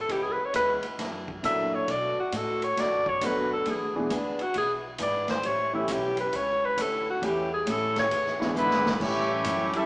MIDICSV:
0, 0, Header, 1, 9, 480
1, 0, Start_track
1, 0, Tempo, 445104
1, 102, Time_signature, 4, 2, 24, 8
1, 10631, End_track
2, 0, Start_track
2, 0, Title_t, "Alto saxophone"
2, 0, Program_c, 0, 65
2, 10, Note_on_c, 0, 69, 100
2, 123, Note_on_c, 0, 67, 94
2, 139, Note_off_c, 0, 69, 0
2, 250, Note_on_c, 0, 68, 93
2, 266, Note_off_c, 0, 67, 0
2, 345, Note_on_c, 0, 71, 98
2, 361, Note_off_c, 0, 68, 0
2, 491, Note_on_c, 0, 73, 102
2, 507, Note_off_c, 0, 71, 0
2, 579, Note_off_c, 0, 73, 0
2, 601, Note_on_c, 0, 71, 103
2, 785, Note_off_c, 0, 71, 0
2, 1567, Note_on_c, 0, 76, 105
2, 1884, Note_on_c, 0, 73, 102
2, 1900, Note_off_c, 0, 76, 0
2, 2058, Note_on_c, 0, 74, 110
2, 2074, Note_off_c, 0, 73, 0
2, 2356, Note_off_c, 0, 74, 0
2, 2370, Note_on_c, 0, 66, 85
2, 2557, Note_on_c, 0, 69, 95
2, 2573, Note_off_c, 0, 66, 0
2, 2844, Note_on_c, 0, 73, 108
2, 2861, Note_off_c, 0, 69, 0
2, 3021, Note_on_c, 0, 74, 110
2, 3037, Note_off_c, 0, 73, 0
2, 3326, Note_on_c, 0, 73, 105
2, 3342, Note_off_c, 0, 74, 0
2, 3511, Note_on_c, 0, 71, 95
2, 3527, Note_off_c, 0, 73, 0
2, 3801, Note_off_c, 0, 71, 0
2, 3808, Note_on_c, 0, 69, 95
2, 3984, Note_on_c, 0, 68, 91
2, 4001, Note_off_c, 0, 69, 0
2, 4276, Note_off_c, 0, 68, 0
2, 4282, Note_on_c, 0, 59, 53
2, 4455, Note_off_c, 0, 59, 0
2, 4457, Note_on_c, 0, 62, 87
2, 4761, Note_on_c, 0, 66, 102
2, 4777, Note_off_c, 0, 62, 0
2, 4918, Note_off_c, 0, 66, 0
2, 4937, Note_on_c, 0, 68, 101
2, 5117, Note_off_c, 0, 68, 0
2, 5419, Note_on_c, 0, 74, 97
2, 5698, Note_off_c, 0, 74, 0
2, 5719, Note_on_c, 0, 72, 105
2, 5892, Note_on_c, 0, 73, 119
2, 5908, Note_off_c, 0, 72, 0
2, 6195, Note_off_c, 0, 73, 0
2, 6203, Note_on_c, 0, 64, 85
2, 6386, Note_on_c, 0, 67, 92
2, 6403, Note_off_c, 0, 64, 0
2, 6682, Note_off_c, 0, 67, 0
2, 6692, Note_on_c, 0, 71, 100
2, 6856, Note_on_c, 0, 73, 115
2, 6872, Note_off_c, 0, 71, 0
2, 7171, Note_on_c, 0, 71, 117
2, 7187, Note_off_c, 0, 73, 0
2, 7349, Note_on_c, 0, 69, 98
2, 7365, Note_off_c, 0, 71, 0
2, 7643, Note_off_c, 0, 69, 0
2, 7658, Note_on_c, 0, 66, 92
2, 7823, Note_on_c, 0, 67, 97
2, 7839, Note_off_c, 0, 66, 0
2, 8120, Note_off_c, 0, 67, 0
2, 8128, Note_on_c, 0, 68, 100
2, 8315, Note_on_c, 0, 69, 98
2, 8331, Note_off_c, 0, 68, 0
2, 8605, Note_off_c, 0, 69, 0
2, 8620, Note_on_c, 0, 73, 115
2, 9203, Note_off_c, 0, 73, 0
2, 10631, End_track
3, 0, Start_track
3, 0, Title_t, "Trumpet section"
3, 0, Program_c, 1, 61
3, 9242, Note_on_c, 1, 56, 71
3, 9242, Note_on_c, 1, 64, 75
3, 9245, Note_on_c, 1, 71, 88
3, 9250, Note_on_c, 1, 62, 74
3, 9680, Note_off_c, 1, 56, 0
3, 9680, Note_off_c, 1, 64, 0
3, 9682, Note_off_c, 1, 71, 0
3, 9684, Note_off_c, 1, 62, 0
3, 9722, Note_on_c, 1, 64, 87
3, 9722, Note_on_c, 1, 73, 104
3, 9723, Note_on_c, 1, 67, 88
3, 9727, Note_on_c, 1, 57, 87
3, 10462, Note_off_c, 1, 64, 0
3, 10462, Note_off_c, 1, 67, 0
3, 10462, Note_off_c, 1, 73, 0
3, 10464, Note_off_c, 1, 57, 0
3, 10521, Note_on_c, 1, 69, 96
3, 10521, Note_on_c, 1, 76, 119
3, 10524, Note_on_c, 1, 67, 97
3, 10525, Note_on_c, 1, 61, 102
3, 10631, Note_off_c, 1, 61, 0
3, 10631, Note_off_c, 1, 67, 0
3, 10631, Note_off_c, 1, 69, 0
3, 10631, Note_off_c, 1, 76, 0
3, 10631, End_track
4, 0, Start_track
4, 0, Title_t, "Grand piano"
4, 0, Program_c, 2, 0
4, 1541, Note_on_c, 2, 54, 56
4, 1545, Note_on_c, 2, 58, 51
4, 1552, Note_on_c, 2, 62, 53
4, 1553, Note_on_c, 2, 64, 48
4, 1554, Note_on_c, 2, 69, 67
4, 2024, Note_off_c, 2, 54, 0
4, 2026, Note_off_c, 2, 58, 0
4, 2029, Note_off_c, 2, 62, 0
4, 2030, Note_off_c, 2, 64, 0
4, 2030, Note_off_c, 2, 69, 0
4, 3458, Note_on_c, 2, 54, 54
4, 3463, Note_on_c, 2, 57, 52
4, 3470, Note_on_c, 2, 59, 46
4, 3473, Note_on_c, 2, 62, 48
4, 3473, Note_on_c, 2, 69, 59
4, 3943, Note_off_c, 2, 54, 0
4, 3946, Note_off_c, 2, 57, 0
4, 3950, Note_off_c, 2, 59, 0
4, 3951, Note_off_c, 2, 62, 0
4, 3951, Note_off_c, 2, 69, 0
4, 4265, Note_on_c, 2, 52, 69
4, 4269, Note_on_c, 2, 56, 64
4, 4269, Note_on_c, 2, 59, 65
4, 4270, Note_on_c, 2, 62, 68
4, 4274, Note_on_c, 2, 68, 83
4, 4414, Note_off_c, 2, 52, 0
4, 4416, Note_off_c, 2, 56, 0
4, 4416, Note_off_c, 2, 59, 0
4, 4416, Note_off_c, 2, 62, 0
4, 4418, Note_off_c, 2, 68, 0
4, 6182, Note_on_c, 2, 52, 72
4, 6182, Note_on_c, 2, 57, 65
4, 6186, Note_on_c, 2, 55, 70
4, 6189, Note_on_c, 2, 61, 66
4, 6190, Note_on_c, 2, 67, 81
4, 6332, Note_off_c, 2, 52, 0
4, 6333, Note_off_c, 2, 57, 0
4, 6334, Note_off_c, 2, 55, 0
4, 6336, Note_off_c, 2, 61, 0
4, 6336, Note_off_c, 2, 67, 0
4, 7775, Note_on_c, 2, 52, 64
4, 7782, Note_on_c, 2, 55, 58
4, 7787, Note_on_c, 2, 57, 56
4, 7791, Note_on_c, 2, 61, 60
4, 7795, Note_on_c, 2, 67, 74
4, 8064, Note_off_c, 2, 52, 0
4, 8068, Note_off_c, 2, 55, 0
4, 8070, Note_off_c, 2, 57, 0
4, 8072, Note_off_c, 2, 61, 0
4, 8074, Note_off_c, 2, 67, 0
4, 9050, Note_on_c, 2, 52, 75
4, 9053, Note_on_c, 2, 56, 68
4, 9056, Note_on_c, 2, 62, 73
4, 9057, Note_on_c, 2, 59, 67
4, 9062, Note_on_c, 2, 64, 85
4, 9204, Note_off_c, 2, 52, 0
4, 9206, Note_off_c, 2, 56, 0
4, 9207, Note_off_c, 2, 62, 0
4, 9208, Note_off_c, 2, 59, 0
4, 9211, Note_off_c, 2, 64, 0
4, 9705, Note_on_c, 2, 52, 64
4, 9706, Note_on_c, 2, 55, 60
4, 9709, Note_on_c, 2, 61, 56
4, 9710, Note_on_c, 2, 57, 56
4, 9713, Note_on_c, 2, 67, 67
4, 9987, Note_off_c, 2, 52, 0
4, 9987, Note_off_c, 2, 55, 0
4, 9989, Note_off_c, 2, 57, 0
4, 9989, Note_off_c, 2, 61, 0
4, 9991, Note_off_c, 2, 67, 0
4, 10631, End_track
5, 0, Start_track
5, 0, Title_t, "Steel-string acoustic guitar"
5, 0, Program_c, 3, 25
5, 96, Note_on_c, 3, 49, 50
5, 105, Note_on_c, 3, 56, 56
5, 112, Note_on_c, 3, 59, 57
5, 119, Note_on_c, 3, 64, 55
5, 430, Note_off_c, 3, 49, 0
5, 435, Note_off_c, 3, 56, 0
5, 438, Note_off_c, 3, 59, 0
5, 442, Note_off_c, 3, 64, 0
5, 580, Note_on_c, 3, 49, 57
5, 584, Note_on_c, 3, 56, 67
5, 587, Note_on_c, 3, 59, 62
5, 593, Note_on_c, 3, 64, 70
5, 913, Note_off_c, 3, 49, 0
5, 915, Note_off_c, 3, 56, 0
5, 916, Note_off_c, 3, 59, 0
5, 919, Note_off_c, 3, 64, 0
5, 1058, Note_on_c, 3, 42, 53
5, 1066, Note_on_c, 3, 52, 60
5, 1069, Note_on_c, 3, 58, 55
5, 1073, Note_on_c, 3, 62, 55
5, 1392, Note_off_c, 3, 42, 0
5, 1396, Note_off_c, 3, 52, 0
5, 1398, Note_off_c, 3, 58, 0
5, 1400, Note_off_c, 3, 62, 0
5, 1543, Note_on_c, 3, 42, 65
5, 1546, Note_on_c, 3, 52, 69
5, 1550, Note_on_c, 3, 58, 67
5, 1556, Note_on_c, 3, 62, 64
5, 1875, Note_off_c, 3, 42, 0
5, 1877, Note_off_c, 3, 52, 0
5, 1879, Note_off_c, 3, 58, 0
5, 1881, Note_off_c, 3, 62, 0
5, 2020, Note_on_c, 3, 47, 52
5, 2028, Note_on_c, 3, 57, 51
5, 2032, Note_on_c, 3, 62, 52
5, 2037, Note_on_c, 3, 66, 58
5, 2354, Note_off_c, 3, 47, 0
5, 2358, Note_off_c, 3, 57, 0
5, 2360, Note_off_c, 3, 62, 0
5, 2363, Note_off_c, 3, 66, 0
5, 2502, Note_on_c, 3, 47, 59
5, 2505, Note_on_c, 3, 57, 62
5, 2515, Note_on_c, 3, 62, 64
5, 2515, Note_on_c, 3, 66, 62
5, 2836, Note_off_c, 3, 47, 0
5, 2837, Note_off_c, 3, 57, 0
5, 2842, Note_off_c, 3, 62, 0
5, 2842, Note_off_c, 3, 66, 0
5, 2985, Note_on_c, 3, 47, 49
5, 2991, Note_on_c, 3, 57, 50
5, 2996, Note_on_c, 3, 62, 50
5, 3003, Note_on_c, 3, 66, 57
5, 3317, Note_off_c, 3, 47, 0
5, 3320, Note_off_c, 3, 57, 0
5, 3323, Note_off_c, 3, 62, 0
5, 3326, Note_off_c, 3, 66, 0
5, 3463, Note_on_c, 3, 47, 67
5, 3470, Note_on_c, 3, 57, 62
5, 3474, Note_on_c, 3, 62, 61
5, 3479, Note_on_c, 3, 66, 64
5, 3796, Note_off_c, 3, 47, 0
5, 3800, Note_off_c, 3, 57, 0
5, 3802, Note_off_c, 3, 62, 0
5, 3804, Note_off_c, 3, 66, 0
5, 3942, Note_on_c, 3, 52, 45
5, 3951, Note_on_c, 3, 59, 53
5, 3962, Note_on_c, 3, 62, 59
5, 3965, Note_on_c, 3, 68, 60
5, 4276, Note_off_c, 3, 52, 0
5, 4281, Note_off_c, 3, 59, 0
5, 4286, Note_off_c, 3, 62, 0
5, 4288, Note_off_c, 3, 68, 0
5, 4426, Note_on_c, 3, 52, 60
5, 4429, Note_on_c, 3, 59, 61
5, 4435, Note_on_c, 3, 62, 65
5, 4440, Note_on_c, 3, 68, 64
5, 4758, Note_off_c, 3, 52, 0
5, 4760, Note_off_c, 3, 59, 0
5, 4763, Note_off_c, 3, 62, 0
5, 4765, Note_off_c, 3, 68, 0
5, 4904, Note_on_c, 3, 52, 48
5, 4913, Note_on_c, 3, 59, 53
5, 4919, Note_on_c, 3, 62, 57
5, 4923, Note_on_c, 3, 68, 63
5, 5237, Note_off_c, 3, 52, 0
5, 5242, Note_off_c, 3, 59, 0
5, 5245, Note_off_c, 3, 62, 0
5, 5247, Note_off_c, 3, 68, 0
5, 5379, Note_on_c, 3, 52, 60
5, 5387, Note_on_c, 3, 59, 63
5, 5391, Note_on_c, 3, 62, 62
5, 5392, Note_on_c, 3, 68, 70
5, 5715, Note_off_c, 3, 52, 0
5, 5719, Note_off_c, 3, 59, 0
5, 5721, Note_off_c, 3, 62, 0
5, 5722, Note_off_c, 3, 68, 0
5, 5863, Note_on_c, 3, 45, 53
5, 5869, Note_on_c, 3, 55, 59
5, 5875, Note_on_c, 3, 61, 51
5, 5881, Note_on_c, 3, 64, 62
5, 6197, Note_off_c, 3, 45, 0
5, 6200, Note_off_c, 3, 55, 0
5, 6203, Note_off_c, 3, 61, 0
5, 6206, Note_off_c, 3, 64, 0
5, 6336, Note_on_c, 3, 45, 69
5, 6344, Note_on_c, 3, 55, 70
5, 6352, Note_on_c, 3, 61, 69
5, 6353, Note_on_c, 3, 64, 63
5, 6674, Note_off_c, 3, 45, 0
5, 6678, Note_off_c, 3, 55, 0
5, 6681, Note_off_c, 3, 61, 0
5, 6682, Note_off_c, 3, 64, 0
5, 6820, Note_on_c, 3, 45, 51
5, 6827, Note_on_c, 3, 55, 55
5, 6837, Note_on_c, 3, 61, 57
5, 6839, Note_on_c, 3, 64, 57
5, 7155, Note_off_c, 3, 45, 0
5, 7159, Note_off_c, 3, 55, 0
5, 7164, Note_off_c, 3, 61, 0
5, 7165, Note_off_c, 3, 64, 0
5, 7299, Note_on_c, 3, 45, 60
5, 7306, Note_on_c, 3, 55, 67
5, 7313, Note_on_c, 3, 61, 67
5, 7318, Note_on_c, 3, 64, 66
5, 7635, Note_off_c, 3, 45, 0
5, 7638, Note_off_c, 3, 55, 0
5, 7642, Note_off_c, 3, 61, 0
5, 7644, Note_off_c, 3, 64, 0
5, 7778, Note_on_c, 3, 45, 55
5, 7789, Note_on_c, 3, 55, 50
5, 7793, Note_on_c, 3, 61, 59
5, 7802, Note_on_c, 3, 64, 61
5, 8114, Note_off_c, 3, 45, 0
5, 8119, Note_off_c, 3, 55, 0
5, 8121, Note_off_c, 3, 61, 0
5, 8126, Note_off_c, 3, 64, 0
5, 8257, Note_on_c, 3, 45, 68
5, 8258, Note_on_c, 3, 55, 66
5, 8263, Note_on_c, 3, 61, 74
5, 8271, Note_on_c, 3, 64, 72
5, 8593, Note_off_c, 3, 45, 0
5, 8593, Note_off_c, 3, 55, 0
5, 8596, Note_off_c, 3, 61, 0
5, 8600, Note_off_c, 3, 64, 0
5, 8736, Note_on_c, 3, 52, 52
5, 8740, Note_on_c, 3, 59, 52
5, 8747, Note_on_c, 3, 62, 52
5, 8759, Note_on_c, 3, 68, 64
5, 9072, Note_off_c, 3, 52, 0
5, 9074, Note_off_c, 3, 59, 0
5, 9077, Note_off_c, 3, 62, 0
5, 9083, Note_off_c, 3, 68, 0
5, 9214, Note_on_c, 3, 52, 78
5, 9220, Note_on_c, 3, 59, 82
5, 9226, Note_on_c, 3, 62, 71
5, 9232, Note_on_c, 3, 68, 80
5, 9550, Note_off_c, 3, 52, 0
5, 9553, Note_off_c, 3, 59, 0
5, 9556, Note_off_c, 3, 62, 0
5, 9559, Note_off_c, 3, 68, 0
5, 9701, Note_on_c, 3, 45, 49
5, 9709, Note_on_c, 3, 55, 52
5, 9716, Note_on_c, 3, 61, 61
5, 9722, Note_on_c, 3, 64, 58
5, 10033, Note_off_c, 3, 45, 0
5, 10037, Note_off_c, 3, 55, 0
5, 10040, Note_off_c, 3, 61, 0
5, 10043, Note_off_c, 3, 64, 0
5, 10178, Note_on_c, 3, 45, 62
5, 10186, Note_on_c, 3, 55, 62
5, 10189, Note_on_c, 3, 61, 70
5, 10192, Note_on_c, 3, 64, 72
5, 10511, Note_off_c, 3, 45, 0
5, 10514, Note_off_c, 3, 55, 0
5, 10516, Note_off_c, 3, 61, 0
5, 10517, Note_off_c, 3, 64, 0
5, 10631, End_track
6, 0, Start_track
6, 0, Title_t, "Trombone section"
6, 0, Program_c, 4, 61
6, 9225, Note_on_c, 4, 56, 78
6, 9227, Note_on_c, 4, 50, 80
6, 9232, Note_on_c, 4, 59, 76
6, 9671, Note_off_c, 4, 56, 0
6, 9672, Note_off_c, 4, 50, 0
6, 9675, Note_off_c, 4, 59, 0
6, 9713, Note_on_c, 4, 55, 77
6, 9716, Note_on_c, 4, 52, 85
6, 9722, Note_on_c, 4, 61, 80
6, 10458, Note_off_c, 4, 55, 0
6, 10459, Note_off_c, 4, 52, 0
6, 10462, Note_off_c, 4, 61, 0
6, 10489, Note_on_c, 4, 61, 91
6, 10497, Note_on_c, 4, 55, 97
6, 10497, Note_on_c, 4, 64, 101
6, 10631, Note_off_c, 4, 55, 0
6, 10631, Note_off_c, 4, 61, 0
6, 10631, Note_off_c, 4, 64, 0
6, 10631, End_track
7, 0, Start_track
7, 0, Title_t, "Upright bass"
7, 0, Program_c, 5, 32
7, 95, Note_on_c, 5, 37, 88
7, 391, Note_off_c, 5, 37, 0
7, 581, Note_on_c, 5, 40, 94
7, 874, Note_off_c, 5, 40, 0
7, 1063, Note_on_c, 5, 42, 84
7, 1530, Note_off_c, 5, 42, 0
7, 1546, Note_on_c, 5, 46, 87
7, 2012, Note_off_c, 5, 46, 0
7, 2021, Note_on_c, 5, 47, 92
7, 2316, Note_off_c, 5, 47, 0
7, 2505, Note_on_c, 5, 45, 87
7, 2972, Note_off_c, 5, 45, 0
7, 2987, Note_on_c, 5, 43, 82
7, 3453, Note_off_c, 5, 43, 0
7, 3469, Note_on_c, 5, 42, 93
7, 3935, Note_off_c, 5, 42, 0
7, 3944, Note_on_c, 5, 40, 95
7, 4115, Note_off_c, 5, 40, 0
7, 4115, Note_on_c, 5, 38, 62
7, 4262, Note_off_c, 5, 38, 0
7, 4269, Note_on_c, 5, 35, 67
7, 4414, Note_off_c, 5, 35, 0
7, 4421, Note_on_c, 5, 38, 95
7, 4717, Note_off_c, 5, 38, 0
7, 4900, Note_on_c, 5, 35, 84
7, 5370, Note_off_c, 5, 35, 0
7, 5381, Note_on_c, 5, 32, 93
7, 5851, Note_off_c, 5, 32, 0
7, 5858, Note_on_c, 5, 33, 95
7, 6330, Note_off_c, 5, 33, 0
7, 6343, Note_on_c, 5, 35, 99
7, 6812, Note_off_c, 5, 35, 0
7, 6822, Note_on_c, 5, 37, 81
7, 7291, Note_off_c, 5, 37, 0
7, 7306, Note_on_c, 5, 38, 95
7, 7773, Note_off_c, 5, 38, 0
7, 7787, Note_on_c, 5, 40, 95
7, 8253, Note_off_c, 5, 40, 0
7, 8263, Note_on_c, 5, 45, 91
7, 8731, Note_off_c, 5, 45, 0
7, 8744, Note_on_c, 5, 40, 91
7, 9211, Note_off_c, 5, 40, 0
7, 9219, Note_on_c, 5, 44, 94
7, 9687, Note_off_c, 5, 44, 0
7, 9708, Note_on_c, 5, 45, 97
7, 10171, Note_off_c, 5, 45, 0
7, 10181, Note_on_c, 5, 42, 100
7, 10631, Note_off_c, 5, 42, 0
7, 10631, End_track
8, 0, Start_track
8, 0, Title_t, "Muted upright bass strokes"
8, 413, Note_on_c, 9, 29, 42
8, 521, Note_off_c, 9, 29, 0
8, 899, Note_on_c, 9, 29, 39
8, 1006, Note_off_c, 9, 29, 0
8, 2344, Note_on_c, 9, 29, 39
8, 2452, Note_off_c, 9, 29, 0
8, 4742, Note_on_c, 9, 29, 41
8, 4850, Note_off_c, 9, 29, 0
8, 10631, End_track
9, 0, Start_track
9, 0, Title_t, "Drums"
9, 99, Note_on_c, 9, 51, 61
9, 101, Note_on_c, 9, 36, 20
9, 207, Note_off_c, 9, 51, 0
9, 208, Note_off_c, 9, 36, 0
9, 579, Note_on_c, 9, 44, 61
9, 579, Note_on_c, 9, 51, 72
9, 582, Note_on_c, 9, 36, 18
9, 687, Note_off_c, 9, 44, 0
9, 687, Note_off_c, 9, 51, 0
9, 689, Note_off_c, 9, 36, 0
9, 890, Note_on_c, 9, 51, 52
9, 998, Note_off_c, 9, 51, 0
9, 1065, Note_on_c, 9, 36, 27
9, 1065, Note_on_c, 9, 51, 70
9, 1066, Note_on_c, 9, 38, 42
9, 1173, Note_off_c, 9, 36, 0
9, 1173, Note_off_c, 9, 51, 0
9, 1174, Note_off_c, 9, 38, 0
9, 1381, Note_on_c, 9, 36, 61
9, 1489, Note_off_c, 9, 36, 0
9, 1546, Note_on_c, 9, 36, 29
9, 1549, Note_on_c, 9, 44, 67
9, 1549, Note_on_c, 9, 51, 67
9, 1654, Note_off_c, 9, 36, 0
9, 1657, Note_off_c, 9, 44, 0
9, 1657, Note_off_c, 9, 51, 0
9, 2026, Note_on_c, 9, 51, 62
9, 2027, Note_on_c, 9, 36, 22
9, 2134, Note_off_c, 9, 51, 0
9, 2135, Note_off_c, 9, 36, 0
9, 2504, Note_on_c, 9, 44, 65
9, 2504, Note_on_c, 9, 51, 80
9, 2508, Note_on_c, 9, 36, 26
9, 2612, Note_off_c, 9, 44, 0
9, 2612, Note_off_c, 9, 51, 0
9, 2616, Note_off_c, 9, 36, 0
9, 2825, Note_on_c, 9, 51, 53
9, 2933, Note_off_c, 9, 51, 0
9, 2989, Note_on_c, 9, 36, 28
9, 2990, Note_on_c, 9, 51, 74
9, 2991, Note_on_c, 9, 38, 43
9, 3097, Note_off_c, 9, 36, 0
9, 3098, Note_off_c, 9, 51, 0
9, 3099, Note_off_c, 9, 38, 0
9, 3302, Note_on_c, 9, 36, 64
9, 3410, Note_off_c, 9, 36, 0
9, 3464, Note_on_c, 9, 44, 67
9, 3464, Note_on_c, 9, 51, 78
9, 3469, Note_on_c, 9, 36, 24
9, 3572, Note_off_c, 9, 44, 0
9, 3572, Note_off_c, 9, 51, 0
9, 3577, Note_off_c, 9, 36, 0
9, 3941, Note_on_c, 9, 51, 59
9, 3948, Note_on_c, 9, 36, 23
9, 4049, Note_off_c, 9, 51, 0
9, 4056, Note_off_c, 9, 36, 0
9, 4423, Note_on_c, 9, 44, 65
9, 4423, Note_on_c, 9, 51, 76
9, 4427, Note_on_c, 9, 36, 29
9, 4531, Note_off_c, 9, 44, 0
9, 4531, Note_off_c, 9, 51, 0
9, 4534, Note_off_c, 9, 36, 0
9, 4733, Note_on_c, 9, 51, 51
9, 4841, Note_off_c, 9, 51, 0
9, 4895, Note_on_c, 9, 51, 65
9, 4903, Note_on_c, 9, 36, 26
9, 5003, Note_off_c, 9, 51, 0
9, 5011, Note_off_c, 9, 36, 0
9, 5373, Note_on_c, 9, 44, 60
9, 5373, Note_on_c, 9, 51, 82
9, 5383, Note_on_c, 9, 36, 22
9, 5481, Note_off_c, 9, 44, 0
9, 5481, Note_off_c, 9, 51, 0
9, 5491, Note_off_c, 9, 36, 0
9, 5692, Note_on_c, 9, 51, 50
9, 5693, Note_on_c, 9, 38, 59
9, 5800, Note_off_c, 9, 51, 0
9, 5801, Note_off_c, 9, 38, 0
9, 5858, Note_on_c, 9, 51, 61
9, 5862, Note_on_c, 9, 36, 19
9, 5965, Note_off_c, 9, 51, 0
9, 5970, Note_off_c, 9, 36, 0
9, 6338, Note_on_c, 9, 44, 65
9, 6338, Note_on_c, 9, 51, 77
9, 6343, Note_on_c, 9, 36, 20
9, 6446, Note_off_c, 9, 44, 0
9, 6446, Note_off_c, 9, 51, 0
9, 6451, Note_off_c, 9, 36, 0
9, 6652, Note_on_c, 9, 51, 53
9, 6760, Note_off_c, 9, 51, 0
9, 6822, Note_on_c, 9, 51, 68
9, 6825, Note_on_c, 9, 36, 28
9, 6930, Note_off_c, 9, 51, 0
9, 6933, Note_off_c, 9, 36, 0
9, 7306, Note_on_c, 9, 36, 24
9, 7306, Note_on_c, 9, 44, 62
9, 7306, Note_on_c, 9, 51, 83
9, 7414, Note_off_c, 9, 36, 0
9, 7414, Note_off_c, 9, 44, 0
9, 7414, Note_off_c, 9, 51, 0
9, 7787, Note_on_c, 9, 36, 26
9, 7791, Note_on_c, 9, 51, 68
9, 7895, Note_off_c, 9, 36, 0
9, 7899, Note_off_c, 9, 51, 0
9, 8266, Note_on_c, 9, 36, 28
9, 8267, Note_on_c, 9, 44, 54
9, 8267, Note_on_c, 9, 51, 79
9, 8374, Note_off_c, 9, 36, 0
9, 8375, Note_off_c, 9, 44, 0
9, 8375, Note_off_c, 9, 51, 0
9, 8583, Note_on_c, 9, 51, 52
9, 8584, Note_on_c, 9, 38, 54
9, 8691, Note_off_c, 9, 51, 0
9, 8692, Note_off_c, 9, 38, 0
9, 8746, Note_on_c, 9, 36, 23
9, 8747, Note_on_c, 9, 51, 74
9, 8854, Note_off_c, 9, 36, 0
9, 8854, Note_off_c, 9, 51, 0
9, 8910, Note_on_c, 9, 38, 31
9, 9017, Note_off_c, 9, 38, 0
9, 9068, Note_on_c, 9, 38, 49
9, 9176, Note_off_c, 9, 38, 0
9, 9233, Note_on_c, 9, 44, 67
9, 9341, Note_off_c, 9, 44, 0
9, 9388, Note_on_c, 9, 38, 67
9, 9496, Note_off_c, 9, 38, 0
9, 9554, Note_on_c, 9, 38, 92
9, 9662, Note_off_c, 9, 38, 0
9, 9708, Note_on_c, 9, 36, 75
9, 9713, Note_on_c, 9, 49, 87
9, 9816, Note_off_c, 9, 36, 0
9, 9820, Note_off_c, 9, 49, 0
9, 10184, Note_on_c, 9, 44, 67
9, 10184, Note_on_c, 9, 51, 85
9, 10185, Note_on_c, 9, 36, 23
9, 10292, Note_off_c, 9, 44, 0
9, 10292, Note_off_c, 9, 51, 0
9, 10293, Note_off_c, 9, 36, 0
9, 10496, Note_on_c, 9, 51, 57
9, 10604, Note_off_c, 9, 51, 0
9, 10631, End_track
0, 0, End_of_file